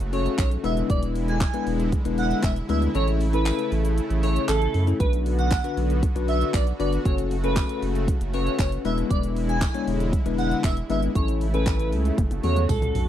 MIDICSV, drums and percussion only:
0, 0, Header, 1, 2, 480
1, 0, Start_track
1, 0, Tempo, 512821
1, 841, Time_signature, 4, 2, 24, 8
1, 12247, End_track
2, 0, Start_track
2, 0, Title_t, "Drums"
2, 1, Note_on_c, 9, 42, 56
2, 1, Note_on_c, 9, 82, 58
2, 95, Note_off_c, 9, 42, 0
2, 95, Note_off_c, 9, 82, 0
2, 120, Note_on_c, 9, 46, 72
2, 120, Note_on_c, 9, 82, 53
2, 214, Note_off_c, 9, 46, 0
2, 214, Note_off_c, 9, 82, 0
2, 242, Note_on_c, 9, 42, 51
2, 242, Note_on_c, 9, 82, 67
2, 336, Note_off_c, 9, 42, 0
2, 336, Note_off_c, 9, 82, 0
2, 360, Note_on_c, 9, 36, 117
2, 360, Note_on_c, 9, 54, 88
2, 361, Note_on_c, 9, 39, 112
2, 362, Note_on_c, 9, 42, 79
2, 362, Note_on_c, 9, 82, 79
2, 453, Note_off_c, 9, 36, 0
2, 454, Note_off_c, 9, 39, 0
2, 454, Note_off_c, 9, 54, 0
2, 456, Note_off_c, 9, 42, 0
2, 456, Note_off_c, 9, 82, 0
2, 481, Note_on_c, 9, 42, 51
2, 481, Note_on_c, 9, 82, 52
2, 575, Note_off_c, 9, 42, 0
2, 575, Note_off_c, 9, 82, 0
2, 600, Note_on_c, 9, 46, 73
2, 600, Note_on_c, 9, 82, 52
2, 693, Note_off_c, 9, 46, 0
2, 693, Note_off_c, 9, 82, 0
2, 720, Note_on_c, 9, 42, 54
2, 720, Note_on_c, 9, 82, 78
2, 814, Note_off_c, 9, 42, 0
2, 814, Note_off_c, 9, 82, 0
2, 839, Note_on_c, 9, 42, 78
2, 839, Note_on_c, 9, 82, 77
2, 841, Note_on_c, 9, 36, 110
2, 933, Note_off_c, 9, 42, 0
2, 933, Note_off_c, 9, 82, 0
2, 934, Note_off_c, 9, 36, 0
2, 960, Note_on_c, 9, 42, 58
2, 960, Note_on_c, 9, 82, 57
2, 1054, Note_off_c, 9, 42, 0
2, 1054, Note_off_c, 9, 82, 0
2, 1081, Note_on_c, 9, 46, 74
2, 1081, Note_on_c, 9, 82, 54
2, 1174, Note_off_c, 9, 46, 0
2, 1174, Note_off_c, 9, 82, 0
2, 1200, Note_on_c, 9, 42, 53
2, 1200, Note_on_c, 9, 82, 72
2, 1294, Note_off_c, 9, 42, 0
2, 1294, Note_off_c, 9, 82, 0
2, 1317, Note_on_c, 9, 42, 67
2, 1317, Note_on_c, 9, 82, 70
2, 1319, Note_on_c, 9, 36, 121
2, 1319, Note_on_c, 9, 39, 113
2, 1322, Note_on_c, 9, 54, 79
2, 1410, Note_off_c, 9, 42, 0
2, 1410, Note_off_c, 9, 82, 0
2, 1413, Note_off_c, 9, 36, 0
2, 1413, Note_off_c, 9, 39, 0
2, 1415, Note_off_c, 9, 54, 0
2, 1438, Note_on_c, 9, 42, 63
2, 1438, Note_on_c, 9, 82, 61
2, 1531, Note_off_c, 9, 42, 0
2, 1531, Note_off_c, 9, 82, 0
2, 1560, Note_on_c, 9, 46, 71
2, 1560, Note_on_c, 9, 82, 50
2, 1654, Note_off_c, 9, 46, 0
2, 1654, Note_off_c, 9, 82, 0
2, 1681, Note_on_c, 9, 42, 59
2, 1681, Note_on_c, 9, 82, 84
2, 1774, Note_off_c, 9, 42, 0
2, 1774, Note_off_c, 9, 82, 0
2, 1800, Note_on_c, 9, 36, 104
2, 1801, Note_on_c, 9, 42, 75
2, 1801, Note_on_c, 9, 82, 72
2, 1894, Note_off_c, 9, 36, 0
2, 1895, Note_off_c, 9, 42, 0
2, 1895, Note_off_c, 9, 82, 0
2, 1920, Note_on_c, 9, 42, 57
2, 1920, Note_on_c, 9, 82, 56
2, 2014, Note_off_c, 9, 42, 0
2, 2014, Note_off_c, 9, 82, 0
2, 2039, Note_on_c, 9, 46, 71
2, 2039, Note_on_c, 9, 82, 53
2, 2132, Note_off_c, 9, 46, 0
2, 2132, Note_off_c, 9, 82, 0
2, 2160, Note_on_c, 9, 42, 49
2, 2160, Note_on_c, 9, 82, 68
2, 2254, Note_off_c, 9, 42, 0
2, 2254, Note_off_c, 9, 82, 0
2, 2278, Note_on_c, 9, 36, 120
2, 2278, Note_on_c, 9, 39, 115
2, 2279, Note_on_c, 9, 42, 81
2, 2279, Note_on_c, 9, 82, 78
2, 2280, Note_on_c, 9, 54, 85
2, 2371, Note_off_c, 9, 39, 0
2, 2372, Note_off_c, 9, 36, 0
2, 2373, Note_off_c, 9, 42, 0
2, 2373, Note_off_c, 9, 82, 0
2, 2374, Note_off_c, 9, 54, 0
2, 2399, Note_on_c, 9, 42, 51
2, 2399, Note_on_c, 9, 82, 52
2, 2493, Note_off_c, 9, 42, 0
2, 2493, Note_off_c, 9, 82, 0
2, 2519, Note_on_c, 9, 46, 73
2, 2519, Note_on_c, 9, 82, 54
2, 2612, Note_off_c, 9, 46, 0
2, 2612, Note_off_c, 9, 82, 0
2, 2639, Note_on_c, 9, 42, 57
2, 2639, Note_on_c, 9, 82, 77
2, 2733, Note_off_c, 9, 42, 0
2, 2733, Note_off_c, 9, 82, 0
2, 2759, Note_on_c, 9, 42, 72
2, 2759, Note_on_c, 9, 82, 76
2, 2853, Note_off_c, 9, 42, 0
2, 2853, Note_off_c, 9, 82, 0
2, 2880, Note_on_c, 9, 42, 57
2, 2880, Note_on_c, 9, 82, 61
2, 2973, Note_off_c, 9, 42, 0
2, 2973, Note_off_c, 9, 82, 0
2, 3000, Note_on_c, 9, 46, 74
2, 3000, Note_on_c, 9, 82, 57
2, 3094, Note_off_c, 9, 46, 0
2, 3094, Note_off_c, 9, 82, 0
2, 3119, Note_on_c, 9, 42, 50
2, 3119, Note_on_c, 9, 82, 72
2, 3213, Note_off_c, 9, 42, 0
2, 3213, Note_off_c, 9, 82, 0
2, 3237, Note_on_c, 9, 42, 71
2, 3237, Note_on_c, 9, 82, 71
2, 3239, Note_on_c, 9, 54, 79
2, 3240, Note_on_c, 9, 39, 114
2, 3330, Note_off_c, 9, 42, 0
2, 3330, Note_off_c, 9, 82, 0
2, 3333, Note_off_c, 9, 39, 0
2, 3333, Note_off_c, 9, 54, 0
2, 3358, Note_on_c, 9, 42, 62
2, 3358, Note_on_c, 9, 82, 63
2, 3451, Note_off_c, 9, 42, 0
2, 3451, Note_off_c, 9, 82, 0
2, 3481, Note_on_c, 9, 46, 72
2, 3481, Note_on_c, 9, 82, 53
2, 3574, Note_off_c, 9, 46, 0
2, 3574, Note_off_c, 9, 82, 0
2, 3601, Note_on_c, 9, 42, 60
2, 3601, Note_on_c, 9, 82, 86
2, 3694, Note_off_c, 9, 42, 0
2, 3694, Note_off_c, 9, 82, 0
2, 3722, Note_on_c, 9, 42, 74
2, 3722, Note_on_c, 9, 82, 77
2, 3816, Note_off_c, 9, 42, 0
2, 3816, Note_off_c, 9, 82, 0
2, 3842, Note_on_c, 9, 42, 57
2, 3842, Note_on_c, 9, 82, 56
2, 3936, Note_off_c, 9, 42, 0
2, 3936, Note_off_c, 9, 82, 0
2, 3960, Note_on_c, 9, 46, 75
2, 3960, Note_on_c, 9, 82, 52
2, 4053, Note_off_c, 9, 46, 0
2, 4053, Note_off_c, 9, 82, 0
2, 4082, Note_on_c, 9, 42, 49
2, 4082, Note_on_c, 9, 82, 67
2, 4176, Note_off_c, 9, 42, 0
2, 4176, Note_off_c, 9, 82, 0
2, 4200, Note_on_c, 9, 39, 121
2, 4201, Note_on_c, 9, 42, 81
2, 4201, Note_on_c, 9, 54, 92
2, 4201, Note_on_c, 9, 82, 85
2, 4293, Note_off_c, 9, 39, 0
2, 4295, Note_off_c, 9, 42, 0
2, 4295, Note_off_c, 9, 54, 0
2, 4295, Note_off_c, 9, 82, 0
2, 4321, Note_on_c, 9, 42, 52
2, 4321, Note_on_c, 9, 82, 51
2, 4415, Note_off_c, 9, 42, 0
2, 4415, Note_off_c, 9, 82, 0
2, 4439, Note_on_c, 9, 46, 72
2, 4439, Note_on_c, 9, 82, 53
2, 4533, Note_off_c, 9, 46, 0
2, 4533, Note_off_c, 9, 82, 0
2, 4561, Note_on_c, 9, 42, 56
2, 4561, Note_on_c, 9, 82, 78
2, 4654, Note_off_c, 9, 42, 0
2, 4654, Note_off_c, 9, 82, 0
2, 4680, Note_on_c, 9, 42, 75
2, 4680, Note_on_c, 9, 82, 75
2, 4681, Note_on_c, 9, 36, 112
2, 4774, Note_off_c, 9, 42, 0
2, 4774, Note_off_c, 9, 82, 0
2, 4775, Note_off_c, 9, 36, 0
2, 4803, Note_on_c, 9, 42, 58
2, 4803, Note_on_c, 9, 82, 59
2, 4897, Note_off_c, 9, 42, 0
2, 4897, Note_off_c, 9, 82, 0
2, 4923, Note_on_c, 9, 46, 76
2, 4923, Note_on_c, 9, 82, 56
2, 5016, Note_off_c, 9, 46, 0
2, 5016, Note_off_c, 9, 82, 0
2, 5042, Note_on_c, 9, 42, 52
2, 5042, Note_on_c, 9, 82, 70
2, 5136, Note_off_c, 9, 42, 0
2, 5136, Note_off_c, 9, 82, 0
2, 5159, Note_on_c, 9, 42, 68
2, 5159, Note_on_c, 9, 82, 69
2, 5161, Note_on_c, 9, 36, 117
2, 5162, Note_on_c, 9, 39, 117
2, 5162, Note_on_c, 9, 54, 79
2, 5253, Note_off_c, 9, 42, 0
2, 5253, Note_off_c, 9, 82, 0
2, 5254, Note_off_c, 9, 36, 0
2, 5255, Note_off_c, 9, 39, 0
2, 5256, Note_off_c, 9, 54, 0
2, 5281, Note_on_c, 9, 42, 61
2, 5281, Note_on_c, 9, 82, 60
2, 5375, Note_off_c, 9, 42, 0
2, 5375, Note_off_c, 9, 82, 0
2, 5404, Note_on_c, 9, 46, 74
2, 5404, Note_on_c, 9, 82, 52
2, 5497, Note_off_c, 9, 46, 0
2, 5497, Note_off_c, 9, 82, 0
2, 5523, Note_on_c, 9, 42, 61
2, 5523, Note_on_c, 9, 82, 82
2, 5616, Note_off_c, 9, 42, 0
2, 5616, Note_off_c, 9, 82, 0
2, 5642, Note_on_c, 9, 36, 108
2, 5642, Note_on_c, 9, 42, 74
2, 5642, Note_on_c, 9, 82, 73
2, 5735, Note_off_c, 9, 36, 0
2, 5736, Note_off_c, 9, 42, 0
2, 5736, Note_off_c, 9, 82, 0
2, 5764, Note_on_c, 9, 42, 58
2, 5764, Note_on_c, 9, 82, 55
2, 5857, Note_off_c, 9, 42, 0
2, 5857, Note_off_c, 9, 82, 0
2, 5879, Note_on_c, 9, 46, 73
2, 5879, Note_on_c, 9, 82, 52
2, 5973, Note_off_c, 9, 46, 0
2, 5973, Note_off_c, 9, 82, 0
2, 6002, Note_on_c, 9, 42, 48
2, 6002, Note_on_c, 9, 82, 70
2, 6095, Note_off_c, 9, 42, 0
2, 6095, Note_off_c, 9, 82, 0
2, 6121, Note_on_c, 9, 36, 117
2, 6121, Note_on_c, 9, 39, 111
2, 6122, Note_on_c, 9, 54, 91
2, 6123, Note_on_c, 9, 42, 82
2, 6123, Note_on_c, 9, 82, 80
2, 6214, Note_off_c, 9, 36, 0
2, 6215, Note_off_c, 9, 39, 0
2, 6215, Note_off_c, 9, 54, 0
2, 6216, Note_off_c, 9, 42, 0
2, 6216, Note_off_c, 9, 82, 0
2, 6242, Note_on_c, 9, 42, 50
2, 6242, Note_on_c, 9, 82, 54
2, 6336, Note_off_c, 9, 42, 0
2, 6336, Note_off_c, 9, 82, 0
2, 6362, Note_on_c, 9, 46, 74
2, 6362, Note_on_c, 9, 82, 53
2, 6456, Note_off_c, 9, 46, 0
2, 6456, Note_off_c, 9, 82, 0
2, 6482, Note_on_c, 9, 42, 56
2, 6482, Note_on_c, 9, 82, 77
2, 6576, Note_off_c, 9, 42, 0
2, 6576, Note_off_c, 9, 82, 0
2, 6602, Note_on_c, 9, 42, 79
2, 6602, Note_on_c, 9, 82, 73
2, 6603, Note_on_c, 9, 36, 115
2, 6696, Note_off_c, 9, 36, 0
2, 6696, Note_off_c, 9, 42, 0
2, 6696, Note_off_c, 9, 82, 0
2, 6723, Note_on_c, 9, 42, 59
2, 6723, Note_on_c, 9, 82, 57
2, 6817, Note_off_c, 9, 42, 0
2, 6817, Note_off_c, 9, 82, 0
2, 6842, Note_on_c, 9, 46, 76
2, 6842, Note_on_c, 9, 82, 53
2, 6936, Note_off_c, 9, 46, 0
2, 6936, Note_off_c, 9, 82, 0
2, 6961, Note_on_c, 9, 42, 53
2, 6961, Note_on_c, 9, 82, 72
2, 7054, Note_off_c, 9, 42, 0
2, 7054, Note_off_c, 9, 82, 0
2, 7079, Note_on_c, 9, 42, 71
2, 7079, Note_on_c, 9, 82, 68
2, 7081, Note_on_c, 9, 36, 117
2, 7081, Note_on_c, 9, 39, 115
2, 7082, Note_on_c, 9, 54, 75
2, 7172, Note_off_c, 9, 42, 0
2, 7172, Note_off_c, 9, 82, 0
2, 7175, Note_off_c, 9, 36, 0
2, 7175, Note_off_c, 9, 39, 0
2, 7176, Note_off_c, 9, 54, 0
2, 7201, Note_on_c, 9, 42, 65
2, 7201, Note_on_c, 9, 82, 60
2, 7295, Note_off_c, 9, 42, 0
2, 7295, Note_off_c, 9, 82, 0
2, 7324, Note_on_c, 9, 46, 70
2, 7324, Note_on_c, 9, 82, 52
2, 7418, Note_off_c, 9, 46, 0
2, 7418, Note_off_c, 9, 82, 0
2, 7444, Note_on_c, 9, 42, 60
2, 7444, Note_on_c, 9, 82, 84
2, 7538, Note_off_c, 9, 42, 0
2, 7538, Note_off_c, 9, 82, 0
2, 7562, Note_on_c, 9, 36, 110
2, 7564, Note_on_c, 9, 42, 74
2, 7564, Note_on_c, 9, 82, 77
2, 7656, Note_off_c, 9, 36, 0
2, 7657, Note_off_c, 9, 42, 0
2, 7657, Note_off_c, 9, 82, 0
2, 7684, Note_on_c, 9, 42, 57
2, 7684, Note_on_c, 9, 82, 57
2, 7778, Note_off_c, 9, 42, 0
2, 7778, Note_off_c, 9, 82, 0
2, 7801, Note_on_c, 9, 46, 72
2, 7801, Note_on_c, 9, 82, 53
2, 7895, Note_off_c, 9, 46, 0
2, 7895, Note_off_c, 9, 82, 0
2, 7924, Note_on_c, 9, 42, 49
2, 7924, Note_on_c, 9, 82, 66
2, 8017, Note_off_c, 9, 42, 0
2, 8017, Note_off_c, 9, 82, 0
2, 8041, Note_on_c, 9, 36, 114
2, 8041, Note_on_c, 9, 54, 88
2, 8044, Note_on_c, 9, 39, 119
2, 8045, Note_on_c, 9, 42, 81
2, 8045, Note_on_c, 9, 82, 82
2, 8135, Note_off_c, 9, 36, 0
2, 8135, Note_off_c, 9, 54, 0
2, 8137, Note_off_c, 9, 39, 0
2, 8139, Note_off_c, 9, 42, 0
2, 8139, Note_off_c, 9, 82, 0
2, 8164, Note_on_c, 9, 42, 54
2, 8164, Note_on_c, 9, 82, 53
2, 8258, Note_off_c, 9, 42, 0
2, 8258, Note_off_c, 9, 82, 0
2, 8282, Note_on_c, 9, 46, 72
2, 8282, Note_on_c, 9, 82, 53
2, 8376, Note_off_c, 9, 46, 0
2, 8376, Note_off_c, 9, 82, 0
2, 8403, Note_on_c, 9, 42, 57
2, 8403, Note_on_c, 9, 82, 77
2, 8497, Note_off_c, 9, 42, 0
2, 8497, Note_off_c, 9, 82, 0
2, 8522, Note_on_c, 9, 36, 108
2, 8523, Note_on_c, 9, 42, 79
2, 8523, Note_on_c, 9, 82, 77
2, 8615, Note_off_c, 9, 36, 0
2, 8616, Note_off_c, 9, 42, 0
2, 8616, Note_off_c, 9, 82, 0
2, 8643, Note_on_c, 9, 42, 57
2, 8643, Note_on_c, 9, 82, 60
2, 8737, Note_off_c, 9, 42, 0
2, 8737, Note_off_c, 9, 82, 0
2, 8765, Note_on_c, 9, 46, 77
2, 8765, Note_on_c, 9, 82, 54
2, 8858, Note_off_c, 9, 46, 0
2, 8858, Note_off_c, 9, 82, 0
2, 8884, Note_on_c, 9, 42, 52
2, 8884, Note_on_c, 9, 82, 75
2, 8977, Note_off_c, 9, 42, 0
2, 8977, Note_off_c, 9, 82, 0
2, 8999, Note_on_c, 9, 42, 70
2, 8999, Note_on_c, 9, 54, 81
2, 8999, Note_on_c, 9, 82, 68
2, 9000, Note_on_c, 9, 36, 118
2, 9002, Note_on_c, 9, 39, 119
2, 9092, Note_off_c, 9, 54, 0
2, 9093, Note_off_c, 9, 42, 0
2, 9093, Note_off_c, 9, 82, 0
2, 9094, Note_off_c, 9, 36, 0
2, 9095, Note_off_c, 9, 39, 0
2, 9121, Note_on_c, 9, 42, 63
2, 9121, Note_on_c, 9, 82, 61
2, 9214, Note_off_c, 9, 42, 0
2, 9214, Note_off_c, 9, 82, 0
2, 9243, Note_on_c, 9, 46, 75
2, 9243, Note_on_c, 9, 82, 52
2, 9337, Note_off_c, 9, 46, 0
2, 9337, Note_off_c, 9, 82, 0
2, 9363, Note_on_c, 9, 42, 61
2, 9363, Note_on_c, 9, 82, 83
2, 9456, Note_off_c, 9, 42, 0
2, 9456, Note_off_c, 9, 82, 0
2, 9480, Note_on_c, 9, 36, 107
2, 9482, Note_on_c, 9, 42, 75
2, 9482, Note_on_c, 9, 82, 73
2, 9574, Note_off_c, 9, 36, 0
2, 9576, Note_off_c, 9, 42, 0
2, 9576, Note_off_c, 9, 82, 0
2, 9601, Note_on_c, 9, 42, 56
2, 9601, Note_on_c, 9, 82, 56
2, 9695, Note_off_c, 9, 42, 0
2, 9695, Note_off_c, 9, 82, 0
2, 9719, Note_on_c, 9, 46, 69
2, 9719, Note_on_c, 9, 82, 52
2, 9813, Note_off_c, 9, 46, 0
2, 9813, Note_off_c, 9, 82, 0
2, 9840, Note_on_c, 9, 42, 50
2, 9840, Note_on_c, 9, 82, 66
2, 9934, Note_off_c, 9, 42, 0
2, 9934, Note_off_c, 9, 82, 0
2, 9958, Note_on_c, 9, 36, 117
2, 9959, Note_on_c, 9, 39, 112
2, 9959, Note_on_c, 9, 54, 88
2, 9960, Note_on_c, 9, 42, 84
2, 9960, Note_on_c, 9, 82, 85
2, 10052, Note_off_c, 9, 36, 0
2, 10052, Note_off_c, 9, 39, 0
2, 10053, Note_off_c, 9, 54, 0
2, 10054, Note_off_c, 9, 42, 0
2, 10054, Note_off_c, 9, 82, 0
2, 10079, Note_on_c, 9, 42, 52
2, 10079, Note_on_c, 9, 82, 53
2, 10173, Note_off_c, 9, 42, 0
2, 10173, Note_off_c, 9, 82, 0
2, 10199, Note_on_c, 9, 46, 74
2, 10199, Note_on_c, 9, 82, 56
2, 10293, Note_off_c, 9, 46, 0
2, 10293, Note_off_c, 9, 82, 0
2, 10320, Note_on_c, 9, 42, 57
2, 10320, Note_on_c, 9, 82, 78
2, 10413, Note_off_c, 9, 42, 0
2, 10413, Note_off_c, 9, 82, 0
2, 10440, Note_on_c, 9, 36, 110
2, 10440, Note_on_c, 9, 42, 72
2, 10440, Note_on_c, 9, 82, 77
2, 10534, Note_off_c, 9, 36, 0
2, 10534, Note_off_c, 9, 42, 0
2, 10534, Note_off_c, 9, 82, 0
2, 10561, Note_on_c, 9, 42, 55
2, 10561, Note_on_c, 9, 82, 58
2, 10654, Note_off_c, 9, 42, 0
2, 10654, Note_off_c, 9, 82, 0
2, 10681, Note_on_c, 9, 46, 76
2, 10681, Note_on_c, 9, 82, 53
2, 10774, Note_off_c, 9, 46, 0
2, 10774, Note_off_c, 9, 82, 0
2, 10801, Note_on_c, 9, 42, 52
2, 10801, Note_on_c, 9, 82, 73
2, 10894, Note_off_c, 9, 42, 0
2, 10894, Note_off_c, 9, 82, 0
2, 10918, Note_on_c, 9, 42, 68
2, 10918, Note_on_c, 9, 82, 69
2, 10919, Note_on_c, 9, 54, 81
2, 10920, Note_on_c, 9, 36, 119
2, 10921, Note_on_c, 9, 39, 117
2, 11012, Note_off_c, 9, 42, 0
2, 11012, Note_off_c, 9, 82, 0
2, 11013, Note_off_c, 9, 36, 0
2, 11013, Note_off_c, 9, 54, 0
2, 11014, Note_off_c, 9, 39, 0
2, 11040, Note_on_c, 9, 42, 63
2, 11040, Note_on_c, 9, 82, 61
2, 11134, Note_off_c, 9, 42, 0
2, 11134, Note_off_c, 9, 82, 0
2, 11162, Note_on_c, 9, 46, 71
2, 11162, Note_on_c, 9, 82, 54
2, 11255, Note_off_c, 9, 46, 0
2, 11255, Note_off_c, 9, 82, 0
2, 11281, Note_on_c, 9, 42, 63
2, 11281, Note_on_c, 9, 82, 84
2, 11375, Note_off_c, 9, 42, 0
2, 11375, Note_off_c, 9, 82, 0
2, 11400, Note_on_c, 9, 36, 113
2, 11400, Note_on_c, 9, 48, 61
2, 11401, Note_on_c, 9, 42, 76
2, 11401, Note_on_c, 9, 82, 74
2, 11493, Note_off_c, 9, 48, 0
2, 11494, Note_off_c, 9, 36, 0
2, 11495, Note_off_c, 9, 42, 0
2, 11495, Note_off_c, 9, 82, 0
2, 11521, Note_on_c, 9, 48, 57
2, 11522, Note_on_c, 9, 42, 59
2, 11522, Note_on_c, 9, 82, 56
2, 11615, Note_off_c, 9, 42, 0
2, 11615, Note_off_c, 9, 48, 0
2, 11615, Note_off_c, 9, 82, 0
2, 11639, Note_on_c, 9, 46, 73
2, 11639, Note_on_c, 9, 82, 52
2, 11641, Note_on_c, 9, 47, 76
2, 11732, Note_off_c, 9, 46, 0
2, 11732, Note_off_c, 9, 82, 0
2, 11734, Note_off_c, 9, 47, 0
2, 11759, Note_on_c, 9, 47, 76
2, 11760, Note_on_c, 9, 42, 50
2, 11760, Note_on_c, 9, 82, 66
2, 11853, Note_off_c, 9, 42, 0
2, 11853, Note_off_c, 9, 47, 0
2, 11853, Note_off_c, 9, 82, 0
2, 11879, Note_on_c, 9, 36, 117
2, 11879, Note_on_c, 9, 54, 86
2, 11880, Note_on_c, 9, 45, 93
2, 11881, Note_on_c, 9, 42, 82
2, 11881, Note_on_c, 9, 82, 79
2, 11973, Note_off_c, 9, 36, 0
2, 11973, Note_off_c, 9, 45, 0
2, 11973, Note_off_c, 9, 54, 0
2, 11975, Note_off_c, 9, 42, 0
2, 11975, Note_off_c, 9, 82, 0
2, 12001, Note_on_c, 9, 42, 50
2, 12001, Note_on_c, 9, 45, 87
2, 12001, Note_on_c, 9, 82, 52
2, 12095, Note_off_c, 9, 42, 0
2, 12095, Note_off_c, 9, 45, 0
2, 12095, Note_off_c, 9, 82, 0
2, 12122, Note_on_c, 9, 43, 112
2, 12122, Note_on_c, 9, 46, 74
2, 12122, Note_on_c, 9, 82, 55
2, 12215, Note_off_c, 9, 43, 0
2, 12215, Note_off_c, 9, 46, 0
2, 12215, Note_off_c, 9, 82, 0
2, 12247, End_track
0, 0, End_of_file